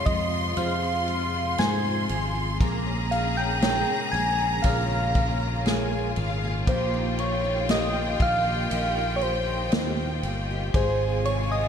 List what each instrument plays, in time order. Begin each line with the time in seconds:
Already playing: steel-string acoustic guitar F2 C4 F4, string section C3 G#3 F4, grand piano F3 F4 G#4, violin section C6
0.06 fingered electric bass F2, steel-string acoustic guitar G#3, soft synth lead D#5, kick, ride
0.32 steel-string acoustic guitar F4
0.56 fingered electric bass F2, steel-string acoustic guitar F2 F4, grand piano F4 G#4 C5, soft synth lead F5, ride
0.83 steel-string acoustic guitar C4
1.08 steel-string acoustic guitar F4, ride
1.33 steel-string acoustic guitar C4
1.58 fingered electric bass G#2, steel-string acoustic guitar G#3, grand piano F4 G#4 C5, soft synth lead G#5, snare, ride
1.85 steel-string acoustic guitar C4
2.09 fingered electric bass G#1, steel-string acoustic guitar G#3, ride
2.35 steel-string acoustic guitar F4
2.59 fingered electric bass A#1, steel-string acoustic guitar A#2 G#4, string section C#3 A#3 G#4, grand piano A#3, violin section A#5, kick, ride
2.86 steel-string acoustic guitar C#4
3.11 steel-string acoustic guitar G#4, soft synth lead F5, ride
3.37 steel-string acoustic guitar C#4, soft synth lead G5
3.62 steel-string acoustic guitar G#3, grand piano G#4 A#4 C#5, snare, ride
3.89 steel-string acoustic guitar C#4
4.12 fingered electric bass A#1, steel-string acoustic guitar G#3, soft synth lead G#5, ride
4.40 steel-string acoustic guitar G#4
4.62 fingered electric bass A#1, steel-string acoustic guitar A#2 G#4, string section F4, grand piano G#4 A#4 C#5, soft synth lead F5, kick, ride
4.90 steel-string acoustic guitar C#4
5.15 steel-string acoustic guitar G#4, kick, ride
5.42 steel-string acoustic guitar C#4
5.66 steel-string acoustic guitar G#3, grand piano G#4 A#4 C#5, violin section G#5, snare, ride
5.93 steel-string acoustic guitar C#4
6.16 fingered electric bass G#1, steel-string acoustic guitar G#3, violin section F5, ride
6.44 steel-string acoustic guitar G#4
6.67 fingered electric bass A#1, steel-string acoustic guitar A#2 G4, string section D#3, grand piano A#3, soft synth lead C5, violin section G5, kick, ride
6.94 steel-string acoustic guitar D#4
7.18 steel-string acoustic guitar G4, soft synth lead C#5, ride
7.44 steel-string acoustic guitar D#4
7.69 steel-string acoustic guitar A#3, grand piano G4 A#4 D#5, soft synth lead D#5, snare, ride
7.95 steel-string acoustic guitar D#4
8.20 fingered electric bass A#1, steel-string acoustic guitar A#3, soft synth lead F5, kick, ride
8.46 steel-string acoustic guitar G4
8.70 fingered electric bass A#1, steel-string acoustic guitar A#2 G4, grand piano G4 A#4 D#5, ride
8.97 steel-string acoustic guitar D#4
9.16 soft synth lead C#5
9.21 steel-string acoustic guitar G4, soft synth lead C5, ride
9.48 steel-string acoustic guitar D#4
9.71 fingered electric bass D#2, steel-string acoustic guitar A#3, grand piano G4 A#4 D#5, snare, ride
10.00 steel-string acoustic guitar D#4
10.23 fingered electric bass G1, steel-string acoustic guitar A#3, ride
10.51 steel-string acoustic guitar G4
10.73 fingered electric bass G#1, steel-string acoustic guitar G#2 G#4, string section C3 G#3 F4, grand piano G#3, soft synth lead C5, violin section G#5, kick, ride
11.01 steel-string acoustic guitar C4
11.25 steel-string acoustic guitar G#4, soft synth lead C#5, ride
11.52 steel-string acoustic guitar C4, soft synth lead D#5